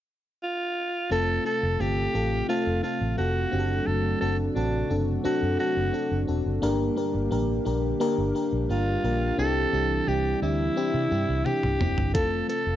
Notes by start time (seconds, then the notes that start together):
0.43 F4
1.11 F1 C3 A3 C4 F4 A4 F5
1.45 A3 C4 F4 A4
1.63 F1
1.80 G1 A3 C4 F4 G4 A4
2.14 A1 A3 C4 F4 A4
2.48 A3 C4 F4 A4
2.67 F1
2.83 A3 C4 F4 A4
3.01 A1
3.17 F1 A3 C4 F4 F#4 A4
3.52 F#1 C3 F#3 C4 D4 F#4 G4
3.59 A4
3.87 F#1 A4
4.21 F#1 C4 D4 F#4 A4
4.55 A1 C4 D4 F#4 A4
4.90 F#1 C4 D4 F#4 A4
5.24 C4 D4 F#4 A4, muted fingered electric bass stroke
5.43 F#2
5.59 C4 D4 F#4 A4
5.77 F#1
5.93 C4 D4 F#4 A4
6.11 F#1
6.27 E1 C4 D4 F#4 A4
6.46 F#1
6.62 G1 G2 D3 G3 A#3 D4 G4 A#4
6.96 A#3 D4 G4 A#4
7.14 G1
7.31 A1 A#3 D4 G4 A#4
7.65 A#1 A#3 D4 G4 A#4
8.00 A#3 D4 G4 A#4
8.18 G1
8.35 A#3 D4 G4 A#4
8.53 A#1
8.69 G1 A#3 D4 F4 G4 A#4
9.03 A#1 A#3 D4 G4 A#4
9.38 C2 C3 E3 C4 D4 E4 G4 A4
9.73 C2 C4 D4 E4 G4
10.07 C2 C4 D4 E4 G4
10.42 D2 C4 D4 E4 G4
10.76 C4 D4 E4 G4
10.94 C3
11.11 G2 C4 D4 E4 G4
11.29 C2
11.45 C4 D4 E4 G4, high tom
11.63 C2, mid tom
11.80 F1 C4 D4 E4 G4, mid tom
11.98 G1, floor tom
12.14 F1 A3 C4 F4 A4 F5, kick, closed hi-hat
12.48 A3 C4 F4 A4, closed hi-hat
12.66 F1